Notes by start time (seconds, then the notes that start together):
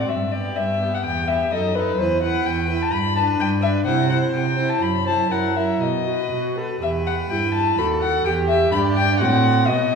Already playing: D5
0.09 G2 E5
0.32 B3 G4 D5
0.56 G2 E5
0.81 B3 G4
0.94 F#5
1.05 E2 B3 G4 G5
1.28 B3 G4 E5
1.52 F#2 D#4 A4 D#5
1.75 D#4 A4 B4
1.98 E2 E4 B4 C5
2.22 E4 B4 F#5
2.46 E2 G5
2.70 E4 B4
2.82 A5
2.93 G2 B5
3.16 D4 B4 A5
3.39 G2 G5
3.62 D4 B4 E5
3.85 C3 E4 C5 F#5
4.09 E4 C5 F#5
4.33 C3 G5
4.56 E4 C5
4.70 A5
4.81 F#2 B5
5.05 E4 C5 A5
5.30 F#2 E4 A#4 F#5
5.56 E4 A#4 E5
5.81 B2 D#5
6.07 F#4 B4
6.32 B2 F#4
6.57 A4 B4
6.82 E2 G4 B4 E5
7.07 F#5
7.30 G2 E4 G5
7.54 A5
7.78 D#2 F#4 A4 B5
8.01 F#5
8.25 E2 G4 G5
8.48 E5
8.72 G2 D4 G4 B5
8.96 G5
9.19 A2 C4 F#4 F#5
9.67 B2 B3 F#4 D#5